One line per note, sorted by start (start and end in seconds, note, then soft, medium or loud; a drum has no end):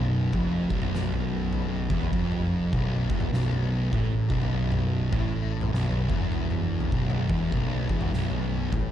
0.00 0.30 B0 medium
0.00 0.34 B1 loud
0.33 0.68 F1 medium
0.33 0.70 F2 loud
0.33 kick medium
0.33 floor tom medium
0.70 1.87 B0 loud
0.70 1.90 B1 medium
0.70 kick loud
0.82 floor tom medium
0.82 mid tom medium
0.95 snare medium
1.12 floor tom medium
1.53 floor tom medium
1.90 2.12 E1 medium
1.90 2.12 E2 loud
1.90 kick loud
2.01 floor tom medium
2.12 2.69 F1 medium
2.12 2.72 F2 loud
2.12 kick loud
2.32 floor tom medium
2.32 mid tom medium
2.73 3.08 B0 loud
2.73 3.09 B1 loud
2.73 kick loud
2.73 floor tom medium
3.10 3.31 E1 loud
3.10 3.32 E2 loud
3.10 kick loud
3.20 floor tom medium
3.20 mid tom medium
3.33 3.89 B0 loud
3.33 3.92 B1 loud
3.33 snare medium
3.51 floor tom medium
3.92 4.28 A1 medium
3.92 4.29 A2 loud
3.92 kick loud
3.92 floor tom medium
4.30 5.09 B0 medium
4.30 5.12 B1 loud
4.30 kick loud
4.42 floor tom medium
4.72 floor tom medium
4.72 mid tom medium
5.12 5.69 A1 loud
5.12 5.72 A2 loud
5.12 kick loud
5.12 floor tom medium
5.61 floor tom medium
5.61 mid tom medium
5.72 6.07 B0 medium
5.72 6.09 B1 loud
5.72 snare medium
5.91 floor tom medium
6.09 6.89 E1 medium
6.09 6.92 E2 loud
6.09 kick loud
6.09 mid tom medium
6.32 floor tom medium
6.50 mid tom medium
6.80 floor tom medium
6.92 7.27 B0 medium
6.92 7.28 B1 loud
6.92 kick loud
7.10 floor tom medium
7.10 mid tom medium
7.29 7.51 E1 loud
7.29 7.52 E2 medium
7.29 kick loud
7.52 7.87 B0 medium
7.52 7.89 B1 loud
7.52 kick medium
7.52 floor tom medium
7.89 8.11 E1 medium
7.89 8.12 E2 medium
7.89 kick medium
8.01 floor tom medium
8.01 mid tom medium
8.13 8.69 B0 loud
8.13 8.72 B1 loud
8.13 snare medium
8.31 floor tom medium
8.72 8.92 A1 loud
8.72 8.92 A2 loud
8.72 kick loud
8.72 floor tom medium